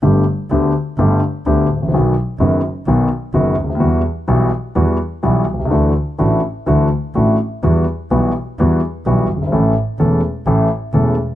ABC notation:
X:1
M:4/4
L:1/16
Q:1/4=127
K:G
V:1 name="Grand piano" clef=bass
[G,,,G,,D,A,B,G]2 z2 [D,,D,A,B,G]2 z2 [G,,,G,,D,A,B,G]2 z2 [D,,D,A,B,G]2 z/2 _A,,,/2 =A,,,/2 _B,,,/2 | [B,,,B,,^D,F,B,F]2 z2 [F,,,F,,D,F,B,F]2 z2 [B,,,B,,D,F,B,F]2 z2 [F,,,F,,D,F,B,F]2 z/2 ^C,,/2 =D,,/2 ^D,,/2 | [E,,E,G,B,F]2 z2 [B,,,B,,E,G,B,F]2 z2 [E,,E,G,B,F]2 z2 [B,,,B,,E,G,B,F]2 z/2 B,,,/2 C,,/2 ^C,,/2 | [D,,D,E,A,DF]2 z2 [A,,,A,,E,A,DF]2 z2 [D,,D,E,A,DF]2 z2 [A,,,A,,E,A,DF]2 z2 |
[E,,E,G,B,F]2 z2 [B,,,B,,E,G,B,F]2 z2 [E,,E,G,B,F]2 z2 [B,,,B,,E,G,B,F]2 z/2 F,,,/2 G,,,/2 _A,,,/2 | [A,,,A,,E,A,^CA]2 z2 [E,,,E,,E,A,CA]2 z2 [A,,,A,,E,A,CA]2 z2 [E,,,E,,E,A,CA]2 z2 |]
V:2 name="Double bass" clef=bass
G,,,2 z2 D,,2 z2 G,,,2 z2 D,,2 A,,,2 | B,,,2 z2 F,,,2 z2 B,,,2 z2 F,,,2 D,,2 | E,,2 z2 B,,,2 z2 E,,2 z2 B,,,2 C,,2 | D,,2 z2 A,,,2 z2 D,,2 z2 A,,,2 z2 |
E,,2 z2 B,,,2 z2 E,,2 z2 B,,,2 G,,,2 | A,,,2 z2 E,,,2 z2 A,,,2 z2 E,,,2 z2 |]